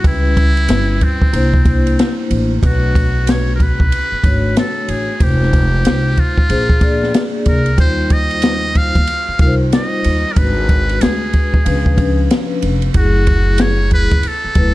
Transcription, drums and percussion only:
0.04 kick, ride
0.37 kick, ride
0.57 ride
0.69 snare, hi-hat pedal, ride
1.01 kick, ride
1.22 kick
1.33 ride
1.54 kick
1.65 kick, ride
1.87 ride
1.99 snare, hi-hat pedal, ride
2.31 ride
2.63 kick, ride
2.95 kick, ride
3.27 snare, hi-hat pedal, ride
3.60 kick, ride
3.80 kick
3.92 ride
4.24 kick, ride
4.57 snare, hi-hat pedal, ride
4.88 ride
5.20 kick, ride
5.43 snare
5.53 kick, ride
5.85 snare, hi-hat pedal, ride
6.17 kick, ride
6.38 kick
6.50 ride
6.70 kick
6.81 kick, ride
7.03 snare
7.14 snare, hi-hat pedal, ride
7.46 kick, ride
7.66 ride
7.78 kick, ride
8.10 kick, ride
8.31 ride
8.42 snare, hi-hat pedal, ride
8.75 kick, ride
8.95 kick, ride
9.07 ride
9.39 kick, ride
9.73 snare, hi-hat pedal, ride
10.04 ride
10.36 kick, ride
10.69 kick, ride
10.89 ride
11.01 snare, hi-hat pedal, ride
11.33 kick, ride
11.54 kick
11.66 ride
11.86 kick
11.98 kick, ride
12.31 snare, hi-hat pedal, ride
12.62 ride
12.82 ride
12.94 kick, ride
13.27 kick, ride
13.58 snare, hi-hat pedal, ride
13.91 kick, ride
14.11 kick, ride
14.23 ride
14.55 kick, ride

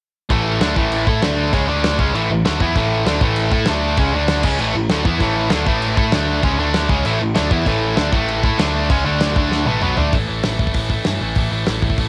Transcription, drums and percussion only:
0.30 kick, crash
0.61 snare, crash
0.76 kick
0.92 crash
1.07 kick
1.22 snare, crash
1.53 kick, crash
1.84 snare, crash
1.99 kick
2.15 crash
2.45 snare, crash
2.60 kick
2.75 kick, crash
3.06 snare, crash
3.21 kick
3.36 crash
3.52 kick
3.65 snare, crash
3.97 kick, crash
4.28 snare, crash
4.43 kick, crash
4.59 crash
4.89 snare, crash
5.05 kick
5.20 kick, crash
5.50 snare, crash
5.67 kick
5.82 crash
5.97 kick
6.12 snare, crash
6.43 kick, crash
6.74 snare, crash
6.89 kick
7.05 crash
7.35 snare, crash
7.51 kick
7.66 kick, crash
7.97 snare, crash
8.13 kick
8.28 crash
8.43 kick
8.59 snare, crash
8.90 kick, crash
9.21 snare, crash
9.36 kick
9.52 snare
9.66 high tom
9.82 mid tom
9.97 floor tom
10.13 kick, open hi-hat
10.43 snare, open hi-hat
10.59 kick
10.67 kick
10.74 kick, open hi-hat
10.90 kick
11.05 snare, open hi-hat
11.35 kick, open hi-hat
11.66 snare, open hi-hat
11.82 kick
11.90 kick
11.98 kick, open hi-hat

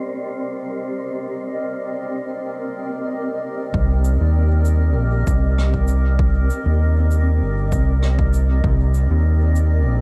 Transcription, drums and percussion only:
3.74 kick
4.04 shaker
4.65 shaker
5.27 kick, shaker
5.58 cross-stick
5.74 kick
5.88 shaker
6.19 kick
6.50 shaker
7.11 shaker
7.72 kick, shaker
8.03 cross-stick
8.19 kick
8.33 shaker
8.64 kick
8.94 shaker
9.56 shaker

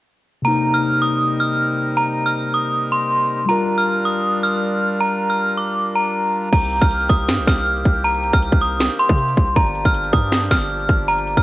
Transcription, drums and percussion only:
6.52 kick, closed hi-hat, crash
6.63 closed hi-hat
6.71 closed hi-hat
6.81 kick, closed hi-hat
6.90 closed hi-hat
7.00 closed hi-hat
7.09 kick, closed hi-hat
7.28 finger snap, snare, closed hi-hat
7.38 closed hi-hat
7.47 finger snap, kick, snare, closed hi-hat
7.57 closed hi-hat
7.66 closed hi-hat
7.76 closed hi-hat
7.85 kick, closed hi-hat
8.04 closed hi-hat
8.14 closed hi-hat
8.23 closed hi-hat
8.33 kick, closed hi-hat
8.42 closed hi-hat
8.52 kick, closed hi-hat
8.61 open hi-hat
8.80 finger snap, snare, closed hi-hat
8.90 closed hi-hat
8.99 closed hi-hat
9.09 kick, closed hi-hat
9.18 closed hi-hat
9.28 closed hi-hat
9.37 kick, closed hi-hat
9.56 kick, closed hi-hat
9.66 closed hi-hat
9.75 closed hi-hat
9.85 kick, closed hi-hat
9.94 closed hi-hat
10.04 closed hi-hat
10.13 kick, closed hi-hat
10.32 finger snap, snare, closed hi-hat
10.42 closed hi-hat
10.51 finger snap, kick, snare, closed hi-hat
10.61 closed hi-hat
10.70 closed hi-hat
10.80 closed hi-hat
10.89 kick, closed hi-hat
11.08 closed hi-hat
11.18 closed hi-hat
11.27 closed hi-hat
11.37 kick, closed hi-hat

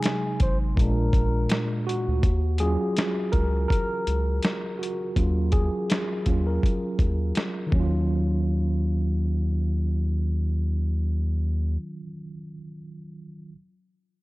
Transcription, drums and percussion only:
0.03 finger snap, snare, closed hi-hat
0.40 kick, closed hi-hat
0.77 kick, closed hi-hat
1.13 kick, closed hi-hat
1.49 finger snap, snare, closed hi-hat
1.89 closed hi-hat
2.23 kick, closed hi-hat
2.58 closed hi-hat
2.97 snare, closed hi-hat
3.33 kick, closed hi-hat
3.70 kick, closed hi-hat
4.07 closed hi-hat
4.43 snare, closed hi-hat
4.83 closed hi-hat
5.16 kick, closed hi-hat
5.52 kick, closed hi-hat
5.90 snare, closed hi-hat
6.26 kick, closed hi-hat
6.63 kick, closed hi-hat
6.99 kick, closed hi-hat
7.35 snare, closed hi-hat
7.72 kick

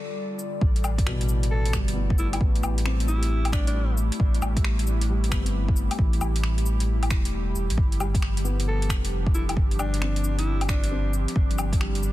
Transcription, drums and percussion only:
0.39 cabasa
0.61 kick
0.76 closed hi-hat
0.84 cabasa, low woodblock
0.98 kick, closed hi-hat
1.07 finger snap
1.21 closed hi-hat
1.29 cabasa
1.43 closed hi-hat
1.66 closed hi-hat
1.73 finger snap, kick, cabasa
1.88 closed hi-hat
2.10 kick
2.18 cabasa
2.33 closed hi-hat, low woodblock
2.41 kick
2.55 closed hi-hat
2.63 cabasa, low woodblock
2.78 closed hi-hat
2.86 finger snap
3.00 closed hi-hat
3.08 cabasa
3.23 closed hi-hat
3.45 closed hi-hat, low woodblock
3.52 finger snap, kick, cabasa
3.67 closed hi-hat
3.98 cabasa
4.12 closed hi-hat
4.20 kick
4.34 closed hi-hat
4.42 cabasa, low woodblock
4.57 kick, closed hi-hat
4.64 finger snap
4.79 closed hi-hat
4.87 cabasa
5.01 closed hi-hat
5.24 closed hi-hat
5.32 finger snap, kick, cabasa
5.46 closed hi-hat
5.68 kick
5.76 cabasa
5.91 closed hi-hat, low woodblock
5.99 kick
6.13 closed hi-hat
6.21 cabasa, low woodblock
6.36 closed hi-hat
6.44 finger snap
6.58 closed hi-hat
6.66 cabasa
6.80 closed hi-hat
7.03 closed hi-hat, low woodblock
7.11 finger snap, kick, cabasa
7.25 closed hi-hat
7.55 cabasa
7.70 closed hi-hat
7.78 kick
7.92 closed hi-hat
8.00 cabasa, low woodblock
8.15 kick, closed hi-hat
8.22 finger snap
8.37 closed hi-hat
8.45 cabasa
8.60 closed hi-hat
8.82 closed hi-hat
8.89 finger snap, kick, cabasa
9.05 closed hi-hat
9.26 kick
9.35 cabasa
9.49 closed hi-hat, low woodblock
9.57 kick
9.71 closed hi-hat
9.79 cabasa, low woodblock
9.94 closed hi-hat
10.02 finger snap
10.16 closed hi-hat
10.24 cabasa
10.39 closed hi-hat
10.61 closed hi-hat, low woodblock
10.69 finger snap, kick, cabasa
10.84 closed hi-hat
11.14 cabasa
11.28 closed hi-hat
11.36 kick
11.51 closed hi-hat
11.58 cabasa, low woodblock
11.73 kick, closed hi-hat
11.81 finger snap
11.95 closed hi-hat
12.03 cabasa

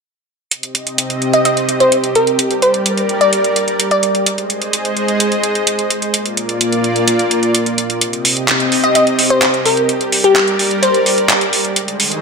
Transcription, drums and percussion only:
0.51 closed hi-hat
0.63 closed hi-hat
0.75 closed hi-hat
0.87 closed hi-hat
0.98 closed hi-hat
1.10 closed hi-hat
1.22 closed hi-hat
1.33 closed hi-hat
1.45 closed hi-hat
1.57 closed hi-hat
1.69 closed hi-hat
1.80 closed hi-hat
1.92 closed hi-hat
2.04 closed hi-hat
2.15 closed hi-hat
2.27 closed hi-hat
2.39 closed hi-hat
2.51 closed hi-hat
2.62 closed hi-hat
2.74 closed hi-hat
2.86 closed hi-hat
2.98 closed hi-hat
3.09 closed hi-hat
3.21 closed hi-hat
3.33 closed hi-hat
3.44 closed hi-hat
3.56 closed hi-hat
3.68 closed hi-hat
3.80 closed hi-hat
3.91 closed hi-hat
4.03 closed hi-hat
4.15 closed hi-hat
4.26 closed hi-hat
4.38 closed hi-hat
4.50 closed hi-hat
4.62 closed hi-hat
4.73 closed hi-hat
4.85 closed hi-hat
4.97 closed hi-hat
5.08 closed hi-hat
5.20 closed hi-hat
5.32 closed hi-hat
5.43 closed hi-hat
5.55 closed hi-hat
5.67 closed hi-hat
5.79 closed hi-hat
5.90 closed hi-hat
6.02 closed hi-hat
6.14 closed hi-hat
6.26 closed hi-hat
6.37 closed hi-hat
6.49 closed hi-hat
6.61 closed hi-hat
6.72 closed hi-hat
6.84 closed hi-hat
6.96 closed hi-hat
7.08 closed hi-hat
7.19 closed hi-hat
7.31 closed hi-hat
7.43 closed hi-hat
7.55 closed hi-hat
7.66 closed hi-hat
7.78 closed hi-hat
7.90 closed hi-hat
8.01 closed hi-hat
8.13 closed hi-hat
8.25 open hi-hat
8.37 closed hi-hat
8.48 clap, closed hi-hat
8.60 closed hi-hat
8.72 open hi-hat
8.84 closed hi-hat
8.95 closed hi-hat
9.07 closed hi-hat
9.19 open hi-hat
9.30 closed hi-hat
9.42 clap, closed hi-hat
9.54 closed hi-hat
9.66 open hi-hat
9.77 closed hi-hat
9.89 closed hi-hat
10.01 closed hi-hat
10.12 open hi-hat
10.24 closed hi-hat
10.36 clap, closed hi-hat
10.48 closed hi-hat
10.59 open hi-hat
10.71 closed hi-hat
10.83 closed hi-hat
10.94 closed hi-hat
11.06 open hi-hat
11.18 closed hi-hat
11.29 clap, closed hi-hat
11.41 closed hi-hat
11.53 open hi-hat
11.65 closed hi-hat
11.76 closed hi-hat
11.88 closed hi-hat
12.00 open hi-hat
12.12 closed hi-hat

